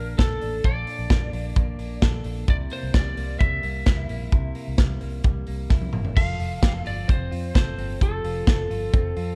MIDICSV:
0, 0, Header, 1, 5, 480
1, 0, Start_track
1, 0, Key_signature, -1, "major"
1, 0, Tempo, 460123
1, 676, Time_signature, 4, 2, 24, 8
1, 9756, End_track
2, 0, Start_track
2, 0, Title_t, "Lead electric guitar"
2, 0, Program_c, 0, 29
2, 0, Note_on_c, 0, 70, 71
2, 163, Note_off_c, 0, 70, 0
2, 189, Note_on_c, 0, 69, 74
2, 680, Note_on_c, 0, 74, 92
2, 687, Note_off_c, 0, 69, 0
2, 2316, Note_off_c, 0, 74, 0
2, 2608, Note_on_c, 0, 74, 101
2, 2671, Note_off_c, 0, 74, 0
2, 2846, Note_on_c, 0, 72, 84
2, 3072, Note_on_c, 0, 74, 92
2, 3088, Note_off_c, 0, 72, 0
2, 3535, Note_off_c, 0, 74, 0
2, 3539, Note_on_c, 0, 76, 79
2, 5907, Note_off_c, 0, 76, 0
2, 6433, Note_on_c, 0, 77, 110
2, 7113, Note_off_c, 0, 77, 0
2, 7166, Note_on_c, 0, 74, 88
2, 7408, Note_off_c, 0, 74, 0
2, 7408, Note_on_c, 0, 72, 94
2, 7874, Note_off_c, 0, 72, 0
2, 7886, Note_on_c, 0, 72, 88
2, 8370, Note_off_c, 0, 72, 0
2, 8374, Note_on_c, 0, 69, 80
2, 9756, Note_off_c, 0, 69, 0
2, 9756, End_track
3, 0, Start_track
3, 0, Title_t, "Clean electric guitar"
3, 0, Program_c, 1, 27
3, 0, Note_on_c, 1, 46, 76
3, 0, Note_on_c, 1, 53, 75
3, 0, Note_on_c, 1, 58, 62
3, 0, Note_on_c, 1, 62, 61
3, 202, Note_on_c, 1, 69, 67
3, 424, Note_off_c, 1, 62, 0
3, 437, Note_on_c, 1, 62, 61
3, 482, Note_off_c, 1, 53, 0
3, 662, Note_off_c, 1, 46, 0
3, 667, Note_off_c, 1, 69, 0
3, 675, Note_on_c, 1, 46, 82
3, 680, Note_on_c, 1, 69, 73
3, 904, Note_off_c, 1, 62, 0
3, 916, Note_on_c, 1, 62, 57
3, 1146, Note_off_c, 1, 58, 0
3, 1150, Note_on_c, 1, 58, 62
3, 1378, Note_off_c, 1, 62, 0
3, 1391, Note_on_c, 1, 62, 67
3, 1626, Note_off_c, 1, 58, 0
3, 1631, Note_on_c, 1, 58, 68
3, 1858, Note_off_c, 1, 62, 0
3, 1871, Note_on_c, 1, 62, 56
3, 2099, Note_off_c, 1, 69, 0
3, 2112, Note_on_c, 1, 69, 73
3, 2341, Note_off_c, 1, 62, 0
3, 2354, Note_on_c, 1, 62, 59
3, 2589, Note_on_c, 1, 48, 84
3, 2593, Note_off_c, 1, 62, 0
3, 2595, Note_off_c, 1, 46, 0
3, 2598, Note_on_c, 1, 64, 58
3, 2642, Note_off_c, 1, 69, 0
3, 2827, Note_off_c, 1, 58, 0
3, 2832, Note_on_c, 1, 58, 60
3, 3067, Note_on_c, 1, 55, 64
3, 3297, Note_off_c, 1, 58, 0
3, 3309, Note_on_c, 1, 58, 62
3, 3546, Note_off_c, 1, 55, 0
3, 3550, Note_on_c, 1, 55, 63
3, 3782, Note_off_c, 1, 58, 0
3, 3794, Note_on_c, 1, 58, 67
3, 4027, Note_off_c, 1, 64, 0
3, 4039, Note_on_c, 1, 64, 68
3, 4267, Note_off_c, 1, 58, 0
3, 4279, Note_on_c, 1, 58, 63
3, 4502, Note_off_c, 1, 48, 0
3, 4510, Note_off_c, 1, 64, 0
3, 4515, Note_on_c, 1, 48, 84
3, 4522, Note_on_c, 1, 64, 73
3, 4736, Note_off_c, 1, 58, 0
3, 4749, Note_on_c, 1, 58, 64
3, 4982, Note_off_c, 1, 55, 0
3, 4986, Note_on_c, 1, 55, 62
3, 5213, Note_off_c, 1, 58, 0
3, 5225, Note_on_c, 1, 58, 59
3, 5463, Note_off_c, 1, 55, 0
3, 5467, Note_on_c, 1, 55, 69
3, 5699, Note_off_c, 1, 58, 0
3, 5712, Note_on_c, 1, 58, 62
3, 5941, Note_off_c, 1, 64, 0
3, 5953, Note_on_c, 1, 64, 72
3, 6173, Note_off_c, 1, 58, 0
3, 6185, Note_on_c, 1, 58, 60
3, 6428, Note_off_c, 1, 48, 0
3, 6432, Note_on_c, 1, 53, 82
3, 6438, Note_on_c, 1, 69, 68
3, 6479, Note_off_c, 1, 58, 0
3, 6483, Note_off_c, 1, 64, 0
3, 6675, Note_on_c, 1, 65, 59
3, 6706, Note_off_c, 1, 55, 0
3, 6905, Note_off_c, 1, 69, 0
3, 6909, Note_on_c, 1, 67, 73
3, 7029, Note_off_c, 1, 67, 0
3, 7029, Note_on_c, 1, 69, 54
3, 7131, Note_off_c, 1, 65, 0
3, 7144, Note_on_c, 1, 65, 66
3, 7385, Note_on_c, 1, 60, 71
3, 7617, Note_off_c, 1, 65, 0
3, 7630, Note_on_c, 1, 65, 62
3, 7858, Note_off_c, 1, 69, 0
3, 7871, Note_on_c, 1, 69, 66
3, 8107, Note_off_c, 1, 60, 0
3, 8120, Note_on_c, 1, 60, 64
3, 8349, Note_off_c, 1, 53, 0
3, 8359, Note_on_c, 1, 53, 88
3, 8365, Note_off_c, 1, 69, 0
3, 8369, Note_on_c, 1, 69, 59
3, 8590, Note_off_c, 1, 65, 0
3, 8602, Note_on_c, 1, 65, 62
3, 8839, Note_off_c, 1, 69, 0
3, 8844, Note_on_c, 1, 69, 68
3, 9066, Note_off_c, 1, 65, 0
3, 9079, Note_on_c, 1, 65, 60
3, 9308, Note_off_c, 1, 60, 0
3, 9320, Note_on_c, 1, 60, 67
3, 9550, Note_off_c, 1, 65, 0
3, 9563, Note_on_c, 1, 65, 60
3, 9756, Note_off_c, 1, 53, 0
3, 9756, Note_off_c, 1, 60, 0
3, 9756, Note_off_c, 1, 65, 0
3, 9756, Note_off_c, 1, 69, 0
3, 9756, End_track
4, 0, Start_track
4, 0, Title_t, "Fingered electric bass"
4, 0, Program_c, 2, 33
4, 0, Note_on_c, 2, 34, 73
4, 155, Note_off_c, 2, 34, 0
4, 196, Note_on_c, 2, 34, 93
4, 393, Note_off_c, 2, 34, 0
4, 442, Note_on_c, 2, 33, 81
4, 636, Note_off_c, 2, 33, 0
4, 671, Note_on_c, 2, 34, 84
4, 869, Note_off_c, 2, 34, 0
4, 1030, Note_on_c, 2, 34, 86
4, 1131, Note_off_c, 2, 34, 0
4, 1152, Note_on_c, 2, 34, 101
4, 1350, Note_off_c, 2, 34, 0
4, 1387, Note_on_c, 2, 34, 96
4, 1587, Note_off_c, 2, 34, 0
4, 1632, Note_on_c, 2, 34, 98
4, 1830, Note_off_c, 2, 34, 0
4, 1864, Note_on_c, 2, 34, 81
4, 2066, Note_off_c, 2, 34, 0
4, 2111, Note_on_c, 2, 34, 111
4, 2310, Note_off_c, 2, 34, 0
4, 2344, Note_on_c, 2, 34, 97
4, 2546, Note_off_c, 2, 34, 0
4, 2590, Note_on_c, 2, 36, 112
4, 2789, Note_off_c, 2, 36, 0
4, 2953, Note_on_c, 2, 36, 91
4, 3053, Note_off_c, 2, 36, 0
4, 3069, Note_on_c, 2, 36, 96
4, 3269, Note_off_c, 2, 36, 0
4, 3308, Note_on_c, 2, 36, 93
4, 3508, Note_off_c, 2, 36, 0
4, 3552, Note_on_c, 2, 36, 99
4, 3751, Note_off_c, 2, 36, 0
4, 3793, Note_on_c, 2, 36, 90
4, 3991, Note_off_c, 2, 36, 0
4, 4032, Note_on_c, 2, 36, 101
4, 4231, Note_off_c, 2, 36, 0
4, 4277, Note_on_c, 2, 34, 96
4, 4474, Note_off_c, 2, 34, 0
4, 4511, Note_on_c, 2, 36, 99
4, 4710, Note_off_c, 2, 36, 0
4, 4878, Note_on_c, 2, 36, 95
4, 4976, Note_off_c, 2, 36, 0
4, 4991, Note_on_c, 2, 36, 102
4, 5190, Note_off_c, 2, 36, 0
4, 5242, Note_on_c, 2, 36, 89
4, 5437, Note_off_c, 2, 36, 0
4, 5472, Note_on_c, 2, 36, 96
4, 5671, Note_off_c, 2, 36, 0
4, 5721, Note_on_c, 2, 36, 90
4, 5916, Note_off_c, 2, 36, 0
4, 5951, Note_on_c, 2, 36, 93
4, 6150, Note_off_c, 2, 36, 0
4, 6199, Note_on_c, 2, 31, 83
4, 6395, Note_off_c, 2, 31, 0
4, 6432, Note_on_c, 2, 29, 105
4, 6631, Note_off_c, 2, 29, 0
4, 6674, Note_on_c, 2, 29, 93
4, 6872, Note_off_c, 2, 29, 0
4, 6914, Note_on_c, 2, 29, 106
4, 7112, Note_off_c, 2, 29, 0
4, 7158, Note_on_c, 2, 31, 85
4, 7354, Note_off_c, 2, 31, 0
4, 7398, Note_on_c, 2, 29, 93
4, 7594, Note_off_c, 2, 29, 0
4, 7637, Note_on_c, 2, 41, 85
4, 7834, Note_off_c, 2, 41, 0
4, 7881, Note_on_c, 2, 29, 100
4, 8076, Note_off_c, 2, 29, 0
4, 8114, Note_on_c, 2, 31, 93
4, 8312, Note_off_c, 2, 31, 0
4, 8360, Note_on_c, 2, 29, 103
4, 8555, Note_off_c, 2, 29, 0
4, 8597, Note_on_c, 2, 29, 98
4, 8793, Note_off_c, 2, 29, 0
4, 8839, Note_on_c, 2, 29, 105
4, 9034, Note_off_c, 2, 29, 0
4, 9086, Note_on_c, 2, 31, 90
4, 9278, Note_off_c, 2, 31, 0
4, 9322, Note_on_c, 2, 29, 93
4, 9516, Note_off_c, 2, 29, 0
4, 9564, Note_on_c, 2, 41, 97
4, 9756, Note_off_c, 2, 41, 0
4, 9756, End_track
5, 0, Start_track
5, 0, Title_t, "Drums"
5, 196, Note_on_c, 9, 36, 104
5, 196, Note_on_c, 9, 42, 77
5, 199, Note_on_c, 9, 38, 107
5, 300, Note_off_c, 9, 36, 0
5, 301, Note_off_c, 9, 42, 0
5, 303, Note_off_c, 9, 38, 0
5, 434, Note_on_c, 9, 46, 73
5, 538, Note_off_c, 9, 46, 0
5, 671, Note_on_c, 9, 36, 92
5, 672, Note_on_c, 9, 42, 62
5, 776, Note_off_c, 9, 36, 0
5, 776, Note_off_c, 9, 42, 0
5, 909, Note_on_c, 9, 46, 81
5, 1013, Note_off_c, 9, 46, 0
5, 1149, Note_on_c, 9, 36, 115
5, 1150, Note_on_c, 9, 38, 111
5, 1152, Note_on_c, 9, 42, 73
5, 1254, Note_off_c, 9, 36, 0
5, 1255, Note_off_c, 9, 38, 0
5, 1256, Note_off_c, 9, 42, 0
5, 1391, Note_on_c, 9, 46, 75
5, 1495, Note_off_c, 9, 46, 0
5, 1628, Note_on_c, 9, 42, 80
5, 1631, Note_on_c, 9, 36, 107
5, 1732, Note_off_c, 9, 42, 0
5, 1735, Note_off_c, 9, 36, 0
5, 1867, Note_on_c, 9, 46, 70
5, 1971, Note_off_c, 9, 46, 0
5, 2106, Note_on_c, 9, 42, 72
5, 2108, Note_on_c, 9, 38, 110
5, 2110, Note_on_c, 9, 36, 107
5, 2210, Note_off_c, 9, 42, 0
5, 2213, Note_off_c, 9, 38, 0
5, 2214, Note_off_c, 9, 36, 0
5, 2341, Note_on_c, 9, 46, 74
5, 2445, Note_off_c, 9, 46, 0
5, 2587, Note_on_c, 9, 42, 63
5, 2589, Note_on_c, 9, 36, 98
5, 2691, Note_off_c, 9, 42, 0
5, 2693, Note_off_c, 9, 36, 0
5, 2818, Note_on_c, 9, 46, 83
5, 2922, Note_off_c, 9, 46, 0
5, 3067, Note_on_c, 9, 38, 127
5, 3068, Note_on_c, 9, 36, 114
5, 3068, Note_on_c, 9, 42, 73
5, 3171, Note_off_c, 9, 38, 0
5, 3172, Note_off_c, 9, 36, 0
5, 3173, Note_off_c, 9, 42, 0
5, 3310, Note_on_c, 9, 46, 76
5, 3414, Note_off_c, 9, 46, 0
5, 3553, Note_on_c, 9, 36, 104
5, 3553, Note_on_c, 9, 42, 77
5, 3657, Note_off_c, 9, 36, 0
5, 3657, Note_off_c, 9, 42, 0
5, 3788, Note_on_c, 9, 46, 71
5, 3892, Note_off_c, 9, 46, 0
5, 4027, Note_on_c, 9, 42, 71
5, 4029, Note_on_c, 9, 38, 110
5, 4033, Note_on_c, 9, 36, 110
5, 4131, Note_off_c, 9, 42, 0
5, 4134, Note_off_c, 9, 38, 0
5, 4137, Note_off_c, 9, 36, 0
5, 4269, Note_on_c, 9, 46, 74
5, 4373, Note_off_c, 9, 46, 0
5, 4508, Note_on_c, 9, 42, 61
5, 4510, Note_on_c, 9, 36, 105
5, 4613, Note_off_c, 9, 42, 0
5, 4615, Note_off_c, 9, 36, 0
5, 4747, Note_on_c, 9, 46, 79
5, 4851, Note_off_c, 9, 46, 0
5, 4986, Note_on_c, 9, 38, 121
5, 4988, Note_on_c, 9, 42, 77
5, 4989, Note_on_c, 9, 36, 113
5, 5090, Note_off_c, 9, 38, 0
5, 5092, Note_off_c, 9, 42, 0
5, 5094, Note_off_c, 9, 36, 0
5, 5225, Note_on_c, 9, 46, 71
5, 5330, Note_off_c, 9, 46, 0
5, 5464, Note_on_c, 9, 42, 76
5, 5470, Note_on_c, 9, 36, 103
5, 5569, Note_off_c, 9, 42, 0
5, 5575, Note_off_c, 9, 36, 0
5, 5703, Note_on_c, 9, 46, 73
5, 5808, Note_off_c, 9, 46, 0
5, 5944, Note_on_c, 9, 38, 54
5, 5950, Note_on_c, 9, 36, 105
5, 6048, Note_off_c, 9, 38, 0
5, 6054, Note_off_c, 9, 36, 0
5, 6067, Note_on_c, 9, 48, 60
5, 6171, Note_off_c, 9, 48, 0
5, 6183, Note_on_c, 9, 45, 92
5, 6288, Note_off_c, 9, 45, 0
5, 6307, Note_on_c, 9, 43, 81
5, 6412, Note_off_c, 9, 43, 0
5, 6432, Note_on_c, 9, 36, 104
5, 6434, Note_on_c, 9, 49, 100
5, 6537, Note_off_c, 9, 36, 0
5, 6539, Note_off_c, 9, 49, 0
5, 6674, Note_on_c, 9, 46, 81
5, 6779, Note_off_c, 9, 46, 0
5, 6913, Note_on_c, 9, 36, 108
5, 6913, Note_on_c, 9, 38, 123
5, 6915, Note_on_c, 9, 42, 75
5, 7017, Note_off_c, 9, 36, 0
5, 7017, Note_off_c, 9, 38, 0
5, 7019, Note_off_c, 9, 42, 0
5, 7155, Note_on_c, 9, 46, 75
5, 7260, Note_off_c, 9, 46, 0
5, 7397, Note_on_c, 9, 36, 111
5, 7399, Note_on_c, 9, 42, 75
5, 7501, Note_off_c, 9, 36, 0
5, 7504, Note_off_c, 9, 42, 0
5, 7640, Note_on_c, 9, 46, 76
5, 7744, Note_off_c, 9, 46, 0
5, 7879, Note_on_c, 9, 36, 109
5, 7881, Note_on_c, 9, 42, 76
5, 7883, Note_on_c, 9, 38, 112
5, 7983, Note_off_c, 9, 36, 0
5, 7985, Note_off_c, 9, 42, 0
5, 7987, Note_off_c, 9, 38, 0
5, 8122, Note_on_c, 9, 46, 77
5, 8226, Note_off_c, 9, 46, 0
5, 8360, Note_on_c, 9, 36, 98
5, 8368, Note_on_c, 9, 42, 65
5, 8464, Note_off_c, 9, 36, 0
5, 8472, Note_off_c, 9, 42, 0
5, 8601, Note_on_c, 9, 46, 80
5, 8705, Note_off_c, 9, 46, 0
5, 8839, Note_on_c, 9, 36, 123
5, 8840, Note_on_c, 9, 38, 127
5, 8842, Note_on_c, 9, 42, 76
5, 8943, Note_off_c, 9, 36, 0
5, 8945, Note_off_c, 9, 38, 0
5, 8946, Note_off_c, 9, 42, 0
5, 9086, Note_on_c, 9, 46, 76
5, 9190, Note_off_c, 9, 46, 0
5, 9322, Note_on_c, 9, 36, 117
5, 9328, Note_on_c, 9, 42, 77
5, 9426, Note_off_c, 9, 36, 0
5, 9432, Note_off_c, 9, 42, 0
5, 9562, Note_on_c, 9, 46, 72
5, 9666, Note_off_c, 9, 46, 0
5, 9756, End_track
0, 0, End_of_file